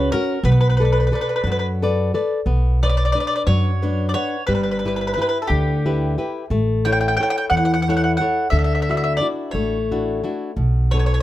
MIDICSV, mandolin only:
0, 0, Header, 1, 2, 480
1, 0, Start_track
1, 0, Key_signature, 2, "minor"
1, 0, Tempo, 672646
1, 310, Time_signature, 6, 3, 24, 8
1, 6075, Tempo, 685714
1, 7972, End_track
2, 0, Start_track
2, 0, Title_t, "Mandolin"
2, 0, Program_c, 0, 25
2, 85, Note_on_c, 0, 70, 81
2, 295, Note_off_c, 0, 70, 0
2, 319, Note_on_c, 0, 71, 65
2, 360, Note_off_c, 0, 71, 0
2, 369, Note_on_c, 0, 71, 39
2, 421, Note_off_c, 0, 71, 0
2, 432, Note_on_c, 0, 71, 53
2, 482, Note_off_c, 0, 71, 0
2, 496, Note_on_c, 0, 71, 45
2, 540, Note_off_c, 0, 71, 0
2, 549, Note_on_c, 0, 71, 52
2, 595, Note_off_c, 0, 71, 0
2, 605, Note_on_c, 0, 71, 39
2, 648, Note_off_c, 0, 71, 0
2, 660, Note_on_c, 0, 71, 52
2, 701, Note_off_c, 0, 71, 0
2, 712, Note_on_c, 0, 71, 41
2, 753, Note_off_c, 0, 71, 0
2, 762, Note_on_c, 0, 71, 46
2, 804, Note_off_c, 0, 71, 0
2, 822, Note_on_c, 0, 71, 44
2, 856, Note_off_c, 0, 71, 0
2, 864, Note_on_c, 0, 71, 52
2, 907, Note_off_c, 0, 71, 0
2, 921, Note_on_c, 0, 71, 43
2, 960, Note_off_c, 0, 71, 0
2, 969, Note_on_c, 0, 71, 50
2, 1012, Note_off_c, 0, 71, 0
2, 1024, Note_on_c, 0, 71, 41
2, 1070, Note_off_c, 0, 71, 0
2, 1081, Note_on_c, 0, 71, 54
2, 1126, Note_off_c, 0, 71, 0
2, 1135, Note_on_c, 0, 71, 44
2, 1185, Note_off_c, 0, 71, 0
2, 2018, Note_on_c, 0, 74, 77
2, 2057, Note_off_c, 0, 74, 0
2, 2065, Note_on_c, 0, 74, 64
2, 2112, Note_off_c, 0, 74, 0
2, 2120, Note_on_c, 0, 74, 66
2, 2168, Note_off_c, 0, 74, 0
2, 2177, Note_on_c, 0, 74, 62
2, 2220, Note_off_c, 0, 74, 0
2, 2229, Note_on_c, 0, 74, 70
2, 2275, Note_off_c, 0, 74, 0
2, 2285, Note_on_c, 0, 74, 62
2, 2326, Note_off_c, 0, 74, 0
2, 2335, Note_on_c, 0, 74, 70
2, 2380, Note_off_c, 0, 74, 0
2, 2395, Note_on_c, 0, 74, 62
2, 2436, Note_off_c, 0, 74, 0
2, 2474, Note_on_c, 0, 73, 76
2, 2891, Note_off_c, 0, 73, 0
2, 2918, Note_on_c, 0, 74, 57
2, 2952, Note_off_c, 0, 74, 0
2, 2954, Note_on_c, 0, 73, 77
2, 3177, Note_off_c, 0, 73, 0
2, 3187, Note_on_c, 0, 71, 69
2, 3236, Note_off_c, 0, 71, 0
2, 3245, Note_on_c, 0, 71, 50
2, 3298, Note_off_c, 0, 71, 0
2, 3306, Note_on_c, 0, 71, 44
2, 3355, Note_off_c, 0, 71, 0
2, 3364, Note_on_c, 0, 71, 50
2, 3410, Note_off_c, 0, 71, 0
2, 3418, Note_on_c, 0, 71, 50
2, 3472, Note_off_c, 0, 71, 0
2, 3480, Note_on_c, 0, 71, 46
2, 3533, Note_off_c, 0, 71, 0
2, 3541, Note_on_c, 0, 71, 53
2, 3566, Note_off_c, 0, 71, 0
2, 3575, Note_on_c, 0, 71, 44
2, 3611, Note_off_c, 0, 71, 0
2, 3620, Note_on_c, 0, 71, 58
2, 3656, Note_off_c, 0, 71, 0
2, 3665, Note_on_c, 0, 71, 58
2, 3713, Note_off_c, 0, 71, 0
2, 3722, Note_on_c, 0, 71, 63
2, 3765, Note_off_c, 0, 71, 0
2, 3773, Note_on_c, 0, 71, 57
2, 3834, Note_off_c, 0, 71, 0
2, 3867, Note_on_c, 0, 69, 44
2, 3906, Note_on_c, 0, 67, 57
2, 3918, Note_off_c, 0, 69, 0
2, 4602, Note_off_c, 0, 67, 0
2, 4888, Note_on_c, 0, 79, 82
2, 4933, Note_off_c, 0, 79, 0
2, 4941, Note_on_c, 0, 79, 62
2, 4991, Note_off_c, 0, 79, 0
2, 5000, Note_on_c, 0, 79, 59
2, 5044, Note_off_c, 0, 79, 0
2, 5053, Note_on_c, 0, 79, 64
2, 5100, Note_off_c, 0, 79, 0
2, 5114, Note_on_c, 0, 79, 72
2, 5149, Note_off_c, 0, 79, 0
2, 5158, Note_on_c, 0, 79, 66
2, 5203, Note_off_c, 0, 79, 0
2, 5211, Note_on_c, 0, 79, 77
2, 5255, Note_off_c, 0, 79, 0
2, 5264, Note_on_c, 0, 79, 63
2, 5310, Note_off_c, 0, 79, 0
2, 5350, Note_on_c, 0, 78, 70
2, 5393, Note_off_c, 0, 78, 0
2, 5401, Note_on_c, 0, 78, 56
2, 5451, Note_off_c, 0, 78, 0
2, 5460, Note_on_c, 0, 78, 65
2, 5512, Note_off_c, 0, 78, 0
2, 5521, Note_on_c, 0, 78, 64
2, 5574, Note_off_c, 0, 78, 0
2, 5582, Note_on_c, 0, 78, 63
2, 5627, Note_off_c, 0, 78, 0
2, 5636, Note_on_c, 0, 78, 58
2, 5676, Note_off_c, 0, 78, 0
2, 5685, Note_on_c, 0, 78, 60
2, 5726, Note_off_c, 0, 78, 0
2, 5735, Note_on_c, 0, 78, 46
2, 5790, Note_off_c, 0, 78, 0
2, 5830, Note_on_c, 0, 78, 68
2, 6053, Note_off_c, 0, 78, 0
2, 6066, Note_on_c, 0, 76, 67
2, 6118, Note_off_c, 0, 76, 0
2, 6127, Note_on_c, 0, 76, 44
2, 6157, Note_off_c, 0, 76, 0
2, 6166, Note_on_c, 0, 76, 55
2, 6232, Note_off_c, 0, 76, 0
2, 6240, Note_on_c, 0, 76, 48
2, 6282, Note_off_c, 0, 76, 0
2, 6290, Note_on_c, 0, 76, 58
2, 6342, Note_off_c, 0, 76, 0
2, 6351, Note_on_c, 0, 76, 48
2, 6387, Note_off_c, 0, 76, 0
2, 6396, Note_on_c, 0, 76, 57
2, 6433, Note_off_c, 0, 76, 0
2, 6442, Note_on_c, 0, 76, 56
2, 6501, Note_off_c, 0, 76, 0
2, 6534, Note_on_c, 0, 74, 74
2, 6600, Note_off_c, 0, 74, 0
2, 6775, Note_on_c, 0, 73, 59
2, 7479, Note_off_c, 0, 73, 0
2, 7754, Note_on_c, 0, 73, 73
2, 7803, Note_off_c, 0, 73, 0
2, 7811, Note_on_c, 0, 73, 56
2, 7851, Note_off_c, 0, 73, 0
2, 7860, Note_on_c, 0, 73, 61
2, 7905, Note_off_c, 0, 73, 0
2, 7914, Note_on_c, 0, 73, 60
2, 7951, Note_off_c, 0, 73, 0
2, 7972, End_track
0, 0, End_of_file